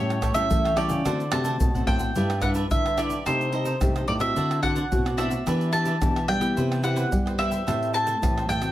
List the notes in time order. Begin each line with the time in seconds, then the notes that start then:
Already playing: A2 G3 C#4 E4 G4 A4 C#5 G5
0.10 pandeiro, tamborim, shaker
0.22 G4 A4 C#5 G5, pandeiro, tamborim, shaker, surdo
0.34 A2 G3 C#4 E4 G4 A4 C#5 E5 G5, pandeiro, shaker
0.51 E3 A3, pandeiro, shaker, surdo
0.64 A4 C#5 G5, pandeiro, tamborim, shaker
0.76 G3 C#4 E4 G4 A4 C#5 D5 G5, pandeiro, tamborim
0.89 C#3 A4 C#5 G5, pandeiro, shaker
1.05 D3 A3 C4 D4 F#4 A4 C5 F#5, pandeiro, tamborim, shaker, surdo
1.20 pandeiro, shaker
1.32 C3 A3 C4 D4 F#4 A4 C5 F#5 A5, pandeiro, tamborim, shaker
1.45 D4 A4 C5 F#5, pandeiro, shaker
1.60 A2 B2, pandeiro, shaker, surdo
1.75 A3 C4 F#4 A4 C5 F#5, pandeiro, shaker, surdo
1.87 A2 D4 A4 C5 F#5 G5, pandeiro, surdo
1.99 A4 C5 F#5, pandeiro, shaker, surdo
2.15 G2 G3 D4 E4 G4 B4 E5, pandeiro, shaker, surdo
2.30 pandeiro, tamborim, shaker
2.42 D4 E4 G4 B4 E5 F#5, pandeiro, tamborim, shaker, surdo
2.55 D4 G4 B4 E5, pandeiro, shaker
2.71 D3 D4 E4 B4 E5, pandeiro, shaker, surdo
2.85 G4 B4 E5, pandeiro, tamborim, shaker
2.97 D4 E4 G4 B4 D5 E5, pandeiro, tamborim, shaker
3.10 G4 B4 E5, pandeiro, shaker
3.26 C3 A3 D#4 G4 A4 C5 D#5, pandeiro, tamborim, shaker, surdo
3.41 pandeiro, shaker
3.52 A3 D#4 G4 A4 C5 D#5, pandeiro
3.65 D#4 A4 C5 D#5, pandeiro, shaker
3.81 G2 C3 A3 D#4 G4, pandeiro, tamborim, shaker, surdo
3.96 A4 C5 D#5, pandeiro, tamborim, shaker
4.07 A2 D#4 A4 C5 D5 D#5, pandeiro
4.20 C4 E4 F#4 A4 C5 D#5 E5, pandeiro, tamborim, shaker
4.36 D3 D4 C5 D5 F#5, pandeiro, shaker, surdo
4.51 pandeiro, tamborim, shaker
4.62 C4 D4 E4 F#4 C5 D5 F#5, pandeiro, tamborim, surdo
4.75 D4 C5 D5 F#5, pandeiro, shaker
4.92 A2 B2 C4 E4 F#4, pandeiro, shaker, surdo
5.05 C5 D5 F#5, pandeiro, tamborim, shaker
5.17 C4 D4 E4 F#4 C5 D5 E5 F#5, pandeiro, tamborim, shaker
5.30 C5 D5 F#5, pandeiro, shaker
5.46 E3 B3 D4 G4 B4 E5, pandeiro, tamborim, shaker, surdo
5.61 pandeiro, shaker
5.72 B3 D4 G4 B4 E5 A5, pandeiro, shaker
5.85 D4 G4 B4 E5, pandeiro, shaker
6.01 B2 E3 B3 D4 G4, pandeiro, tamborim, shaker, surdo
6.16 G4 B4 E5, pandeiro, tamborim, shaker
6.28 G3 B3 D4 G4 B4 E5 G5, pandeiro
6.40 B3 E4 G4 B4 E5, pandeiro, tamborim, shaker
6.56 C3 E4 B4 C5 G5, pandeiro, shaker, surdo
6.72 pandeiro, tamborim, shaker
6.83 B3 E4 G4 B4 C5 F#5 G5, pandeiro, tamborim, shaker
6.96 E4 B4 C5 G5, pandeiro, shaker
7.12 G2 G3, pandeiro, shaker, surdo
7.26 B4 C5 G5, pandeiro, tamborim, shaker
7.38 B3 E4 G4 B4 C5 E5 G5, pandeiro, tamborim
7.51 B4 C5 G5, pandeiro, shaker
7.67 A2 A3 C4 G4 A4 B4 C5 E5 G5, pandeiro, tamborim, shaker, surdo
7.83 pandeiro, shaker
7.93 A4 C5 E5 G5 A5, pandeiro, shaker
8.06 A4 C5 E5 G5, pandeiro, shaker
8.22 A2 E3 C4 G4 B4, pandeiro, tamborim, shaker, surdo
8.37 C5 E5 G5, pandeiro, tamborim, shaker
8.49 A2 A4 C5 E5 G5, pandeiro, shaker
8.61 A3 C4 F#4 C5 E5 G5, pandeiro, tamborim, shaker